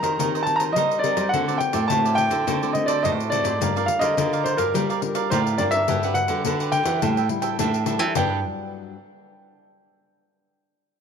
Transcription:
Already playing: D#3 C4 G4 A#4 A#5
0.03 D#3 A#4 C5 D#5, pandeiro
0.19 D#3 C4 D#4 G4 A#4 C5 D#5, pandeiro
0.35 A#4 C5 D#5, pandeiro
0.43 C4 G4 A5, muted cavaquinho stroke, pandeiro
0.47 A#4
0.56 D#5 A#5
0.60 A#4 C5, pandeiro
0.73 D#3 G3 D#4 D#5, pandeiro
0.77 A#4 C5 D#5
0.91 pandeiro
0.99 C4 D5
1.03 D#4 G4 A#4 C5 D#5, pandeiro
1.17 G3 A#4 C5 D#5, pandeiro
1.29 D3 A3 F#5
1.33 D3 C4 F#4 A4 C5 D5, pandeiro
1.48 A3 C4 F#4 A4 C5 D5, pandeiro
1.58 G5, muted cavaquinho stroke, pandeiro
1.73 A2 A4 C5 D5, pandeiro
1.88 A2 A3 C4 F#4 A4 C5 A5, pandeiro
1.92 F#4 D5
2.05 A4 C5 D5, pandeiro
2.15 G5, pandeiro
2.30 D3 A4 C5 D5, pandeiro
2.47 D3 A3 C4 F#4 A4 C5 D5, pandeiro
2.62 A3 C4 F#4 A4 C5 D5, pandeiro
2.73 A3 C4 F#4 D#5, muted cavaquinho stroke, pandeiro
2.86 A4 C5 D5, pandeiro
3.03 A2 F#4 A4 C5 D5 D#5, pandeiro
3.20 pandeiro
3.30 A3 C4 F#4 A4 C5 D5, pandeiro
3.44 G#2 A4 C5 D5, pandeiro
3.61 G2 G3 D4 F4 G4 A#4 D5 F5, pandeiro
3.76 D4 F4 A#4 D5 F5, pandeiro
3.86 F5, muted cavaquinho stroke, pandeiro
3.99 D3 A#4 D5 D#5 F5, pandeiro
4.17 D3 D4 F4 G4 A#4 D5 F5, pandeiro
4.33 A#4 D5 F5, pandeiro
4.44 C5, pandeiro
4.57 G2 A#4 D5 F5, pandeiro
4.74 G3 D4 F4 G4 A#4 D5 F5, pandeiro
4.90 A#4 D5 F5, pandeiro
5.02 D4 F4 A#4, muted cavaquinho stroke, pandeiro
5.15 A#4 D5 F5, pandeiro
5.30 A2 D3 G4 A#4 C5 D5 F5, pandeiro
5.47 pandeiro
5.58 G2 D4 F4 G4 A#4 D5 F5, pandeiro
5.71 A#4 D5 E5 F5, pandeiro
5.88 G2 G3 D4 F#4 G4 B4 F#5, pandeiro
6.03 D4 F#4 G4 B4 F#5, pandeiro
6.14 F#5, muted cavaquinho stroke, pandeiro
6.28 D3 G4 B4 F#5, pandeiro
6.45 D3 D4 F#4 G4 B4 F#5, pandeiro
6.60 G4 B4 F#5, pandeiro
6.72 G5, pandeiro
6.85 E3 G4 B4 F#5, pandeiro
7.02 A2 G3 D4 E4 A4 E5 G5, pandeiro
7.17 A4 E5 G5, pandeiro
7.29 G3 D4 E4, muted cavaquinho stroke, pandeiro
7.42 A4 E5 G5, pandeiro
7.59 A2 E3 D4 A4 E5 G5, pandeiro
7.74 pandeiro
7.86 G3 D4 E4 A4 E5 G5, pandeiro
7.99 E3 A4 E5 G5, pandeiro
8.15 G2 F#3 B3 D4 G4 B4 F#5 G5, pandeiro

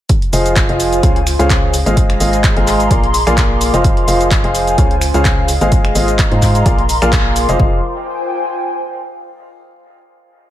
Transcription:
0.09 F4, kick, closed hi-hat, shaker
0.22 closed hi-hat
0.33 F1 F3 F4 G#4 C5 D#5 F5, open hi-hat, shaker
0.46 closed hi-hat, shaker
0.52 C5 G#5, closed hi-hat
0.56 kick, clap, shaker
0.69 F1 F3 F4 G#4 C5 D#5 F5, closed hi-hat
0.80 open hi-hat, shaker
0.93 closed hi-hat, shaker
1.03 C#2 C#3 C#4 F4 G#4 C5 C#5 F5, kick, closed hi-hat, shaker
1.16 closed hi-hat
1.27 finger snap, open hi-hat, shaker
1.33 G#4 D#5 F5
1.39 C#2 C#3 F4 G#4 C5 C#5 F5, closed hi-hat, shaker
1.50 kick, clap, closed hi-hat, shaker
1.74 open hi-hat, shaker
1.86 G#1 G#3 F4 G#4 C5 D#5 F5, closed hi-hat, shaker
1.97 kick, closed hi-hat, shaker
2.06 A#5 C6, finger snap, closed hi-hat
2.20 G#1 G#3 F4 G#4 C5 D#5 F5, open hi-hat, shaker
2.33 closed hi-hat, shaker
2.44 kick, clap, closed hi-hat, shaker
2.56 G#1 G#3 F4 G#4 C5 D#5 F5, closed hi-hat
2.67 clap, open hi-hat, shaker
2.80 closed hi-hat, shaker
2.91 A#1 A#3 F4 G#4 A#4 D5 F5, kick, closed hi-hat, shaker
3.04 closed hi-hat
3.10 D6
3.14 open hi-hat, shaker
3.26 A#1 A#3 F4 G#4 A#4 D5 F5, finger snap, closed hi-hat, shaker
3.38 kick, clap, closed hi-hat, shaker
3.61 open hi-hat, shaker
3.74 F1 F3 F4 G#4 C5 D#5 F5, closed hi-hat, shaker
3.84 F4, kick, closed hi-hat, shaker
3.97 closed hi-hat
4.08 F1 F3 F4 G#4 C5 D#5 F5, open hi-hat, shaker
4.21 closed hi-hat, shaker
4.27 G#5
4.31 kick, clap, closed hi-hat, shaker
4.44 F1 F3 F4 G#4 C5 D#5 F5, closed hi-hat
4.55 open hi-hat, shaker
4.67 closed hi-hat, shaker
4.78 C#2 C#3 C#4 F4 G#4 C5 C#5 F5, kick, closed hi-hat, shaker
4.91 closed hi-hat
5.01 G#4, finger snap, open hi-hat, shaker
5.08 D#5 F5
5.14 C#2 C#3 F4 G#4 C5 C#5 F5, closed hi-hat, shaker
5.25 kick, clap, closed hi-hat, shaker
5.48 open hi-hat, shaker
5.61 G#1 G#3 F4 G#4 C5 D#5 F5, closed hi-hat, shaker
5.72 kick, closed hi-hat, shaker
5.85 finger snap, closed hi-hat
5.95 G#1 G#3 F4 G#4 C5 D#5 F5, open hi-hat, shaker
6.02 A#5 C6
6.08 closed hi-hat, shaker
6.19 kick, clap, closed hi-hat, shaker
6.32 G#2 G#3 F4 G#4 C5 D#5 F5, closed hi-hat
6.42 kick, clap, open hi-hat, shaker
6.55 closed hi-hat, shaker
6.66 A#1 A#3 F4 G#4 A#4 D5 F5, kick, closed hi-hat, shaker
6.77 F5, closed hi-hat
6.89 open hi-hat, shaker
7.02 A#1 A#3 F4 G#4 A#4 D5 F5, finger snap, closed hi-hat, shaker
7.08 D6
7.13 kick, clap, closed hi-hat, shaker
7.36 open hi-hat, shaker
7.49 F1 F3 F4 G#4 C5 D#5 F5, closed hi-hat, shaker
7.59 F1 F4 G#4 C5 D#5 F5, kick
7.67 C5
7.74 G5
7.81 G#5

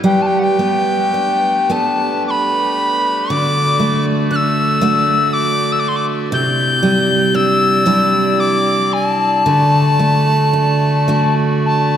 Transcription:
Already playing: G3 B3 E4
0.04 G3 A3 G4 B4 G5
0.22 A5
0.26 G5
0.39 F#5
0.43 G5
0.59 B3
1.14 D4
1.70 B3 D4 A4 A5
2.27 B5 D6
3.30 D3 F#4 D5 D6
3.80 A3
4.31 D4 F#6
4.36 E6
4.81 A3 D4 F#4
5.33 D6
5.72 E6
5.80 D6
5.88 C6
5.96 D6
6.32 C3 C4 E4 G6
6.83 G3
7.34 D4 E6
7.86 G3 D4 E4
8.40 D6
8.93 G#5
9.07 A5
9.46 D3 A3 F#4 D5
9.99 A3
10.53 D4
11.08 A3 D4 F#4
11.66 A5

